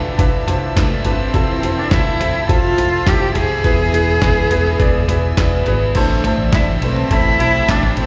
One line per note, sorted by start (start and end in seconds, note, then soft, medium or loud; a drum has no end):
0.00 0.14 F1 loud
0.00 0.18 D4 medium
0.00 0.75 D4 medium
0.00 0.19 E4 medium
0.00 0.77 E4 medium
0.00 0.19 F4 medium
0.00 0.78 A4 medium
0.00 1.35 A4 loud
0.00 0.14 B4 medium
0.00 1.32 D5 medium
0.00 3.61 E5 medium
0.00 3.61 A5 medium
0.00 5.92 E6 medium
0.18 0.42 F1 medium
0.18 0.42 D4 loud
0.18 0.43 E4 loud
0.18 0.43 F4 medium
0.18 0.43 B4 loud
0.18 kick loud
0.18 closed hi-hat medium
0.47 0.71 F1 medium
0.47 0.71 D4 medium
0.47 0.72 E4 medium
0.47 0.72 F4 medium
0.47 0.72 C5 loud
0.47 closed hi-hat medium
0.47 floor tom medium
0.75 1.00 F1 loud
0.75 1.05 A3 medium
0.75 1.00 D4 medium
0.75 1.05 D4 medium
0.75 1.01 E4 medium
0.75 1.05 E4 medium
0.75 1.01 F4 medium
0.75 1.03 A4 medium
0.75 1.01 B4 medium
0.75 kick loud
0.75 snare loud
0.75 clap medium
0.75 closed hi-hat medium
1.04 1.29 G1 medium
1.04 1.80 C4 medium
1.04 1.29 D4 medium
1.04 1.35 D4 soft
1.04 1.29 E4 medium
1.04 1.34 E4 medium
1.04 1.30 F4 medium
1.04 1.34 A4 medium
1.04 1.30 B4 medium
1.04 closed hi-hat medium
1.04 floor tom medium
1.33 1.58 F1 loud
1.33 2.20 E3 medium
1.33 1.63 F3 medium
1.33 1.63 A3 medium
1.33 1.58 C4 medium
1.33 1.64 C4 medium
1.33 1.58 E4 medium
1.33 2.20 E4 medium
1.33 1.62 E4 loud
1.33 1.59 F4 medium
1.33 1.59 A4 loud
1.33 1.61 A4 medium
1.33 3.63 C5 medium
1.33 kick loud
1.33 closed hi-hat medium
1.62 1.86 F1 loud
1.62 1.87 C4 medium
1.62 1.91 C4 medium
1.62 1.87 E4 medium
1.62 1.92 E4 medium
1.62 1.87 F4 medium
1.62 1.91 A4 medium
1.62 1.87 A4 medium
1.62 closed hi-hat medium
1.79 1.93 D4 medium
1.91 2.15 F1 loud
1.91 2.20 A3 medium
1.91 2.16 C4 medium
1.91 2.21 C4 medium
1.91 2.16 E4 medium
1.91 2.46 E4 medium
1.91 2.20 E4 medium
1.91 2.16 F4 medium
1.91 2.16 A4 medium
1.91 2.19 A4 medium
1.91 kick loud
1.91 snare loud
1.91 clap loud
1.91 closed hi-hat medium
2.19 2.44 F1 loud
2.19 2.44 C4 medium
2.19 3.06 C4 medium
2.19 2.44 E4 medium
2.19 3.08 E4 medium
2.19 2.45 F4 medium
2.19 3.07 A4 medium
2.19 2.45 A4 medium
2.19 closed hi-hat medium
2.19 floor tom medium
2.48 2.73 F1 medium
2.48 3.35 F3 medium
2.48 2.73 C4 medium
2.48 2.73 E4 medium
2.48 2.73 F4 medium
2.48 3.35 F4 medium
2.48 3.09 F4 loud
2.48 2.73 A4 loud
2.48 kick loud
2.48 closed hi-hat medium
2.77 3.02 F1 medium
2.77 3.02 C4 medium
2.77 3.02 E4 medium
2.77 3.02 F4 medium
2.77 3.03 A4 medium
2.77 closed hi-hat medium
2.77 floor tom medium
3.05 3.31 F1 loud
3.05 3.36 A3 medium
3.05 3.30 C4 medium
3.05 3.36 C4 medium
3.05 3.31 E4 medium
3.05 3.35 E4 medium
3.05 3.31 F4 medium
3.05 3.35 G4 loud
3.05 3.31 A4 medium
3.05 3.33 A4 medium
3.05 kick loud
3.05 snare loud
3.05 clap medium
3.05 closed hi-hat medium
3.34 3.59 F1 medium
3.34 3.59 C4 medium
3.34 3.64 C4 soft
3.34 3.59 E4 medium
3.34 3.63 E4 medium
3.34 3.60 F4 medium
3.34 3.60 G4 medium
3.34 5.34 G#4 loud
3.34 3.64 A4 medium
3.34 closed hi-hat medium
3.34 floor tom medium
3.63 3.88 E1 loud
3.63 3.93 E3 medium
3.63 5.06 E3 medium
3.63 4.47 E3 medium
3.63 3.89 B3 loud
3.63 3.93 B3 medium
3.63 5.06 E4 medium
3.63 3.89 E4 loud
3.63 3.94 E4 medium
3.63 3.89 G#4 medium
3.63 3.93 G#4 loud
3.63 5.93 B4 medium
3.63 3.89 B4 loud
3.63 3.91 B4 loud
3.63 5.93 E5 medium
3.63 5.93 G#5 medium
3.63 kick loud
3.63 closed hi-hat medium
3.92 4.17 E1 loud
3.92 4.17 B3 medium
3.92 4.17 E4 medium
3.92 4.21 E4 medium
3.92 4.18 G#4 medium
3.92 4.22 G#4 medium
3.92 4.22 B4 medium
3.92 4.18 B4 medium
3.92 closed hi-hat medium
4.21 4.46 E1 loud
4.21 4.46 B3 medium
4.21 4.51 B3 medium
4.21 4.46 E4 medium
4.21 4.51 E4 medium
4.21 4.46 G#4 medium
4.21 4.50 G#4 medium
4.21 4.47 B4 loud
4.21 4.49 B4 medium
4.21 kick loud
4.21 snare loud
4.21 clap medium
4.21 closed hi-hat medium
4.50 4.75 E1 loud
4.50 4.75 B3 medium
4.50 4.75 E4 medium
4.50 5.38 E4 soft
4.50 5.38 G#4 medium
4.50 4.76 G#4 medium
4.50 5.37 B4 medium
4.50 4.76 B4 medium
4.50 closed hi-hat medium
4.50 floor tom medium
4.65 snare soft
4.78 5.04 E1 loud
4.78 5.03 B3 loud
4.78 5.04 E4 loud
4.78 5.04 G#4 loud
4.78 5.04 D5 loud
4.78 kick loud
4.78 closed hi-hat medium
5.08 5.32 E1 medium
5.08 5.33 B3 medium
5.08 5.33 E4 medium
5.08 5.33 G#4 medium
5.08 5.33 B4 loud
5.08 closed hi-hat medium
5.08 floor tom medium
5.37 5.61 E1 loud
5.37 5.66 B2 medium
5.37 5.62 B3 medium
5.37 5.67 B3 medium
5.37 5.66 B3 medium
5.37 5.62 E4 medium
5.37 5.67 E4 medium
5.37 5.62 G#4 medium
5.37 5.66 G#4 medium
5.37 5.65 B4 medium
5.37 5.62 D5 medium
5.37 kick loud
5.37 snare loud
5.37 clap medium
5.37 closed hi-hat medium
5.66 5.90 G#1 loud
5.66 5.91 B3 medium
5.66 5.91 E4 medium
5.66 5.96 E4 soft
5.66 5.91 G#4 medium
5.66 5.96 G#4 medium
5.66 5.95 B4 medium
5.66 5.91 B4 loud
5.66 closed hi-hat medium
5.66 floor tom medium
5.95 6.19 A1 loud
5.95 6.53 A2 medium
5.95 6.79 A2 medium
5.95 6.81 D3 medium
5.95 7.12 E3 loud
5.95 6.20 A3 loud
5.95 6.53 A3 medium
5.95 6.20 C4 loud
5.95 6.53 C4 loud
5.95 6.81 D4 loud
5.95 6.20 E4 loud
5.95 6.20 A4 loud
5.95 6.55 A4 medium
5.95 8.06 C5 medium
5.95 6.20 C5 loud
5.95 6.54 C5 loud
5.95 8.06 E5 medium
5.95 8.06 A5 medium
5.95 8.06 E6 medium
5.95 kick loud
5.95 crash medium
5.95 ride medium
6.24 6.49 A3 medium
6.24 6.49 C4 medium
6.24 6.49 E4 medium
6.24 6.50 A4 medium
6.24 6.50 C5 loud
6.24 floor tom medium
6.24 ride medium
6.38 6.50 A1 loud
6.52 6.77 A1 loud
6.52 6.77 A3 medium
6.52 6.82 A3 medium
6.52 6.78 C4 medium
6.52 6.83 C4 medium
6.52 6.78 E4 medium
6.52 6.67 E4 medium
6.52 6.78 A4 medium
6.52 6.82 A4 medium
6.52 6.81 C5 medium
6.52 6.78 D5 medium
6.52 kick loud
6.52 snare loud
6.52 clap medium
6.52 ride medium
6.81 7.05 B1 loud
6.81 7.07 A3 medium
6.81 7.11 A3 medium
6.81 7.15 C4 medium
6.81 7.07 C4 medium
6.81 7.11 C4 medium
6.81 7.07 E4 medium
6.81 7.12 A4 medium
6.81 7.07 A4 medium
6.81 7.07 B4 medium
6.81 7.11 C5 medium
6.81 ride medium
6.96 floor tom medium
7.10 7.35 A1 loud
7.10 7.69 A2 loud
7.10 7.96 C3 medium
7.10 8.06 E3 loud
7.10 7.35 A3 medium
7.10 7.68 A3 medium
7.10 7.35 C4 medium
7.10 7.96 C4 medium
7.10 7.68 C4 loud
7.10 7.35 E4 medium
7.10 7.72 E4 loud
7.10 7.35 A4 medium
7.10 7.70 A4 medium
7.10 7.36 C5 loud
7.10 7.70 C5 loud
7.10 kick loud
7.10 ride medium
7.39 7.63 B1 medium
7.39 7.64 A3 medium
7.39 7.64 C4 medium
7.39 7.64 E4 medium
7.39 7.64 A4 medium
7.39 7.64 C5 medium
7.39 ride medium
7.68 7.92 A1 loud
7.68 7.93 A3 medium
7.68 7.98 A3 medium
7.68 7.93 C4 medium
7.68 7.98 C4 medium
7.68 7.99 D4 loud
7.68 7.93 E4 medium
7.68 7.93 A4 medium
7.68 7.97 A4 medium
7.68 7.93 C5 medium
7.68 7.96 C5 medium
7.68 kick loud
7.68 snare loud
7.68 clap loud
7.68 ride medium
7.83 floor tom medium
7.97 8.06 A1 medium
7.97 8.06 A3 medium
7.97 8.06 A3 soft
7.97 8.06 C4 medium
7.97 8.06 C4 soft
7.97 8.06 C4 medium
7.97 8.06 E4 medium
7.97 8.06 A4 medium
7.97 8.06 A4 soft
7.97 8.06 C5 medium
7.97 ride medium